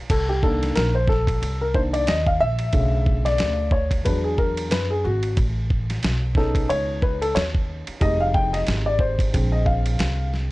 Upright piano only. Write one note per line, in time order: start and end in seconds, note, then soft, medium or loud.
0.10 0.30 A4 medium
0.29 0.42 G4 medium
0.42 0.88 D#3 soft
0.42 0.89 A#3 medium
0.42 0.89 D4 medium
0.42 0.77 A4 medium
0.76 0.93 A#4 loud
0.95 1.09 C5 medium
1.09 1.62 A4 medium
1.61 1.75 A#4 medium
1.74 2.04 D#3 soft
1.74 2.04 A#3 soft
1.74 2.04 D4 soft
1.74 1.80 C5 loud
1.93 2.08 D5 loud
2.08 2.27 D#5 medium
2.26 2.41 F5 medium
2.40 3.22 E5 loud
2.73 3.69 C#3 medium
2.73 3.68 D3 medium
2.73 3.68 A3 soft
3.25 3.74 D5 loud
3.72 4.03 C#5 medium
4.04 5.00 F#3 medium
4.04 5.00 G#3 soft
4.04 5.00 D4 medium
4.04 4.25 B4 medium
4.24 4.39 G#4 medium
4.38 4.72 A#4 medium
4.71 4.91 B4 medium
4.90 5.05 G#4 medium
5.04 5.35 F#4 medium
6.36 7.97 B3 soft
6.36 7.97 C#4 soft
6.36 7.97 D#4 medium
6.36 7.97 G#4 soft
6.36 6.71 A4 medium
6.69 7.03 C#5 loud
7.02 7.22 B4 medium
7.21 7.36 A4 medium
7.35 7.42 C#5 medium
8.00 9.29 G3 medium
8.00 9.29 G#3 medium
8.00 9.29 D#4 medium
8.00 8.21 D#5 medium
8.20 8.33 F5 loud
8.34 8.52 G5 loud
8.53 8.60 D#5 medium
8.86 9.00 D5 medium
9.00 9.54 C5 medium
9.33 10.52 D3 soft
9.33 10.52 G#3 soft
9.33 10.52 C4 medium
9.52 9.66 D#5 medium
9.65 10.28 F5 medium